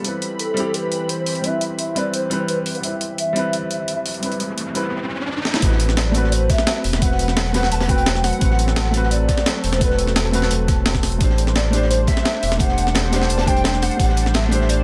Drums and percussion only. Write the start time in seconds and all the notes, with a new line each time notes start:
0.04 closed hi-hat
0.22 closed hi-hat
0.39 closed hi-hat
0.57 closed hi-hat
0.74 closed hi-hat
0.92 closed hi-hat
1.09 closed hi-hat
1.26 open hi-hat
1.35 closed hi-hat
1.44 closed hi-hat
1.61 closed hi-hat
1.79 closed hi-hat
1.96 closed hi-hat
2.14 closed hi-hat
2.31 closed hi-hat
2.48 closed hi-hat
2.66 open hi-hat
2.75 closed hi-hat
2.83 closed hi-hat
3.01 closed hi-hat
3.18 closed hi-hat
3.36 closed hi-hat
3.53 closed hi-hat
3.71 closed hi-hat
3.88 closed hi-hat
4.06 open hi-hat
4.14 closed hi-hat
4.23 closed hi-hat
4.32 closed hi-hat
4.40 closed hi-hat
4.58 closed hi-hat
4.75 closed hi-hat
5.45 snare
5.54 snare
5.62 kick, closed hi-hat
5.72 snare
5.80 closed hi-hat
5.89 snare
5.97 snare, closed hi-hat
6.07 snare
6.14 closed hi-hat
6.24 snare
6.32 closed hi-hat
6.50 kick, snare, closed hi-hat
6.58 snare
6.67 snare, closed hi-hat
6.84 closed hi-hat, open hi-hat
6.93 snare
7.02 kick, closed hi-hat
7.11 snare
7.19 closed hi-hat
7.28 snare
7.37 snare, closed hi-hat
7.46 closed hi-hat
7.54 snare, closed hi-hat
7.63 snare, closed hi-hat
7.72 closed hi-hat
7.80 snare, closed hi-hat
7.89 kick, closed hi-hat
7.98 closed hi-hat
8.06 snare, closed hi-hat
8.15 snare, closed hi-hat
8.24 snare, closed hi-hat, open hi-hat
8.33 closed hi-hat
8.41 kick, closed hi-hat
8.50 snare
8.59 closed hi-hat
8.68 snare
8.76 snare, closed hi-hat
8.86 snare
8.94 closed hi-hat
9.03 snare
9.11 closed hi-hat
9.28 kick, snare, closed hi-hat
9.38 snare
9.46 snare, closed hi-hat
9.64 closed hi-hat, open hi-hat
9.73 snare, closed hi-hat
9.81 kick, closed hi-hat
9.90 snare
9.98 closed hi-hat
10.07 snare
10.16 snare, closed hi-hat
10.25 closed hi-hat
10.33 closed hi-hat
10.42 snare
10.51 closed hi-hat
10.68 kick, snare, closed hi-hat
10.86 snare, closed hi-hat
10.95 kick, snare, closed hi-hat
11.03 snare, closed hi-hat, open hi-hat
11.12 closed hi-hat
11.20 kick, closed hi-hat
11.29 snare
11.38 closed hi-hat
11.47 snare
11.56 snare, closed hi-hat
11.65 snare
11.73 closed hi-hat
11.82 snare
11.91 closed hi-hat
12.07 kick, snare, closed hi-hat
12.17 snare
12.25 snare, closed hi-hat
12.43 closed hi-hat, open hi-hat
12.51 snare, closed hi-hat
12.59 kick, closed hi-hat
12.68 snare
12.78 closed hi-hat
12.87 snare
12.95 snare, closed hi-hat
13.04 closed hi-hat
13.12 snare, closed hi-hat
13.21 snare, closed hi-hat
13.29 closed hi-hat
13.38 snare, closed hi-hat
13.47 kick, closed hi-hat
13.56 closed hi-hat
13.64 snare, closed hi-hat
13.73 snare, closed hi-hat
13.82 snare, closed hi-hat, open hi-hat
13.91 closed hi-hat
14.00 kick, closed hi-hat
14.09 snare
14.17 closed hi-hat
14.26 snare
14.34 snare, closed hi-hat
14.44 snare
14.51 closed hi-hat
14.61 snare
14.69 closed hi-hat